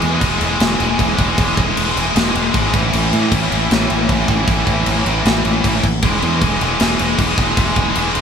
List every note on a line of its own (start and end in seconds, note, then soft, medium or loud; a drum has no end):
0.02 0.20 E2 medium
0.02 0.12 E3 medium
0.02 crash medium
0.06 0.14 G#3 medium
0.13 0.19 E3 medium
0.13 0.21 G#3 medium
0.20 0.39 E1 medium
0.20 0.27 E3 medium
0.20 0.29 G#3 medium
0.20 kick medium
0.20 crash medium
0.29 0.35 E3 medium
0.29 0.36 G#3 medium
0.36 0.43 E3 medium
0.36 0.44 G#3 medium
0.41 0.59 E1 medium
0.41 0.51 E3 medium
0.41 0.52 G#3 medium
0.41 crash medium
0.51 0.59 E3 medium
0.51 0.60 G#3 medium
0.59 0.78 E1 medium
0.59 0.66 E3 medium
0.59 0.68 G#3 medium
0.59 snare loud
0.59 crash medium
0.66 0.74 E3 medium
0.66 0.74 G#3 medium
0.74 0.82 E3 medium
0.74 0.82 G#3 medium
0.80 0.97 E1 medium
0.80 0.89 E3 medium
0.80 crash medium
0.84 0.90 G#3 medium
0.90 0.98 E3 medium
0.90 0.98 G#3 medium
0.98 1.17 E1 medium
0.98 1.05 E3 medium
0.98 1.06 G#3 medium
0.98 kick medium
0.98 crash medium
1.06 1.13 E3 medium
1.06 1.13 G#3 medium
1.13 1.21 E3 medium
1.13 1.21 G#3 medium
1.19 1.36 E1 loud
1.19 1.29 E3 medium
1.19 1.29 G#3 medium
1.19 kick medium
1.19 crash medium
1.29 1.37 E3 medium
1.29 1.37 G#3 medium
1.38 1.55 E1 loud
1.38 1.45 E3 medium
1.38 1.46 G#3 medium
1.38 kick loud
1.38 crash medium
1.45 1.52 E3 medium
1.45 1.53 G#3 medium
1.52 1.60 E3 medium
1.52 1.61 G#3 medium
1.57 1.75 E1 loud
1.57 1.67 E3 medium
1.57 kick medium
1.57 crash medium
1.61 1.68 G#3 medium
1.68 1.75 E3 medium
1.68 1.76 G#3 medium
1.76 1.94 E1 medium
1.76 1.83 E3 medium
1.76 1.84 G#3 medium
1.76 crash medium
1.83 1.90 E3 medium
1.83 1.91 G#3 medium
1.90 1.97 E3 medium
1.90 1.98 G#3 medium
1.96 2.13 E1 medium
1.96 2.04 E3 medium
1.96 2.06 G#3 medium
1.96 crash medium
2.05 2.12 E3 medium
2.05 2.14 G#3 medium
2.12 2.33 E1 loud
2.12 2.20 E3 medium
2.12 2.20 G#3 medium
2.12 crash loud
2.17 2.28 E3 medium
2.17 2.28 G#3 medium
2.17 snare loud
2.29 2.34 E3 medium
2.29 2.36 G#3 medium
2.34 2.52 E1 medium
2.34 2.42 E3 medium
2.34 2.43 G#3 medium
2.34 crash medium
2.42 2.49 E3 medium
2.42 2.51 G#3 medium
2.50 2.57 E3 medium
2.50 2.58 G#3 medium
2.54 2.72 G#1 medium
2.54 kick loud
2.54 crash medium
2.58 2.65 E3 medium
2.58 2.67 G#3 medium
2.65 2.73 E3 medium
2.65 2.75 G#3 medium
2.73 2.91 A1 loud
2.73 2.81 A2 medium
2.73 2.81 E3 medium
2.73 kick loud
2.73 crash medium
2.82 2.88 A2 medium
2.82 2.89 E3 medium
2.88 2.96 A2 medium
2.88 2.97 E3 medium
2.93 3.11 A1 loud
2.93 3.03 A2 medium
2.93 crash medium
2.98 3.05 E3 medium
3.04 3.11 A2 medium
3.04 3.11 E3 medium
3.12 3.19 A2 medium
3.12 3.30 A2 medium
3.12 3.19 E3 medium
3.12 crash medium
3.20 3.26 A2 medium
3.20 3.27 E3 medium
3.26 3.34 A2 medium
3.26 3.34 E3 medium
3.32 3.49 A1 medium
3.32 3.42 A2 medium
3.32 3.42 E3 medium
3.32 kick medium
3.32 crash medium
3.42 3.49 A2 medium
3.42 3.49 E3 medium
3.49 3.69 A1 medium
3.49 3.57 A2 medium
3.49 3.57 E3 medium
3.49 crash medium
3.57 3.65 A2 medium
3.57 3.65 E3 medium
3.65 3.73 A2 medium
3.65 3.73 E3 medium
3.71 3.88 A1 loud
3.71 3.80 A2 medium
3.71 3.81 E3 medium
3.71 snare loud
3.71 crash medium
3.81 3.88 A2 medium
3.81 3.88 E3 medium
3.89 4.07 A1 loud
3.89 3.96 A2 medium
3.89 3.96 E3 medium
3.89 crash medium
3.97 4.04 A2 medium
3.97 4.04 E3 medium
4.04 4.11 A2 medium
4.04 4.12 E3 medium
4.09 4.27 A1 medium
4.09 4.19 A2 medium
4.09 4.20 E3 medium
4.09 kick medium
4.09 crash medium
4.19 4.27 A2 medium
4.19 4.28 E3 medium
4.28 4.46 A1 medium
4.28 4.36 A2 medium
4.28 4.36 E3 medium
4.28 kick medium
4.28 crash medium
4.36 4.43 A2 medium
4.36 4.44 E3 medium
4.43 4.51 A2 medium
4.43 4.51 E3 medium
4.48 4.65 A1 loud
4.48 4.58 A2 medium
4.48 4.59 E3 medium
4.48 kick loud
4.48 crash medium
4.59 4.66 A2 medium
4.59 4.67 E3 medium
4.67 4.84 A1 medium
4.67 4.74 A2 medium
4.67 4.74 E3 medium
4.67 kick medium
4.67 crash medium
4.75 4.81 A2 medium
4.75 4.82 E3 medium
4.81 4.89 A2 medium
4.81 4.90 E3 medium
4.86 5.04 A1 medium
4.86 crash medium
4.91 4.97 A2 medium
4.91 4.98 E3 medium
4.97 5.05 A2 medium
4.97 5.05 E3 medium
5.06 5.23 A1 loud
5.06 5.13 A2 medium
5.06 5.13 E3 medium
5.06 crash medium
5.13 5.20 A2 medium
5.13 5.22 E3 medium
5.21 5.29 A2 medium
5.21 5.30 E3 medium
5.25 5.43 A1 medium
5.25 5.37 A2 medium
5.25 snare loud
5.25 crash medium
5.30 5.37 E3 medium
5.37 5.44 A2 medium
5.37 5.45 E3 medium
5.44 5.62 A1 medium
5.44 5.52 A2 medium
5.44 5.52 E3 medium
5.44 crash medium
5.52 5.60 A2 medium
5.52 5.59 E3 medium
5.60 5.68 A2 medium
5.60 5.68 E3 medium
5.64 5.81 A1 medium
5.64 5.75 A2 medium
5.64 5.76 E3 medium
5.64 kick medium
5.64 crash medium
5.75 5.83 A2 medium
5.75 5.84 E3 medium
5.84 6.01 A1 medium
5.84 kick medium
5.84 crash medium
6.02 6.20 E1 loud
6.02 6.10 E3 loud
6.02 6.11 G#3 medium
6.02 kick loud
6.02 crash medium
6.11 6.18 E3 medium
6.11 6.19 G#3 medium
6.19 6.40 E2 medium
6.19 6.25 E3 medium
6.19 6.27 G#3 medium
6.19 crash medium
6.25 6.33 E3 medium
6.25 6.34 G#3 medium
6.33 6.40 E3 medium
6.33 6.42 G#3 medium
6.41 6.59 E1 medium
6.41 6.48 E3 medium
6.41 6.49 G#3 medium
6.41 kick medium
6.41 crash medium
6.49 6.56 E3 medium
6.49 6.57 G#3 medium
6.57 6.64 E3 medium
6.57 6.65 G#3 medium
6.57 crash medium
6.61 6.78 E1 loud
6.61 6.72 E3 medium
6.65 6.73 G#3 medium
6.72 6.79 E3 medium
6.72 6.81 G#3 medium
6.79 6.98 E1 loud
6.79 6.87 E3 medium
6.79 6.87 G#3 medium
6.79 snare loud
6.79 crash medium
6.87 6.94 E3 medium
6.87 6.95 G#3 medium
6.94 7.02 E3 medium
6.94 7.04 G#3 medium
6.99 7.17 E1 medium
6.99 7.10 E3 medium
6.99 crash medium
7.04 7.11 G#3 medium
7.11 7.17 E3 medium
7.11 7.19 G#3 medium
7.17 7.36 E1 medium
7.17 7.25 E3 medium
7.17 7.26 G#3 medium
7.17 kick medium
7.17 crash medium
7.26 7.32 E3 medium
7.26 7.34 G#3 medium
7.33 7.40 E3 medium
7.33 7.41 G#3 medium
7.38 7.55 E1 medium
7.38 7.48 E3 medium
7.38 7.49 G#3 medium
7.38 kick medium
7.38 crash medium
7.49 7.57 E3 medium
7.49 7.58 G#3 medium
7.57 7.75 E1 loud
7.57 7.65 E3 medium
7.57 7.65 G#3 medium
7.57 kick loud
7.57 crash medium
7.65 7.73 E3 medium
7.65 7.73 G#3 medium
7.73 7.94 E1 loud
7.73 7.81 E3 medium
7.73 7.81 G#3 medium
7.73 kick medium
7.73 crash medium
7.81 7.88 E3 medium
7.81 7.89 G#3 medium
7.88 7.96 E3 medium
7.88 7.96 G#3 medium
7.95 8.13 E1 medium
7.95 8.03 E3 medium
7.95 8.04 G#3 medium
7.95 crash medium
8.04 8.11 E3 medium
8.04 8.12 G#3 medium
8.12 8.21 E1 medium
8.12 8.19 E3 medium
8.12 8.20 G#3 medium
8.12 crash medium